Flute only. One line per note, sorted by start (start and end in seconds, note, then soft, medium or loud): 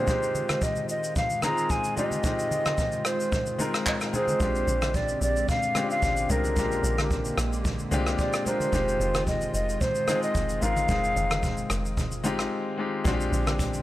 0.00 0.65 C5 loud
0.63 0.89 D#5 medium
0.90 1.15 D#5 loud
1.17 1.42 F5 loud
1.44 1.72 A#5 loud
1.71 1.97 G#5 loud
1.98 3.07 D#5 loud
3.06 3.60 C5 medium
3.88 3.94 D#5 medium
4.15 4.97 C5 loud
4.96 5.22 D5 loud
5.23 5.47 D5 loud
5.49 5.88 F5 loud
5.91 6.32 F5 loud
6.31 7.38 A#4 medium
8.20 8.44 D5 medium
8.47 9.23 C5 medium
9.28 9.52 D#5 medium
9.54 9.83 D#5 loud
9.81 10.22 C5 medium
10.23 10.64 D#5 loud
10.62 11.70 F5 loud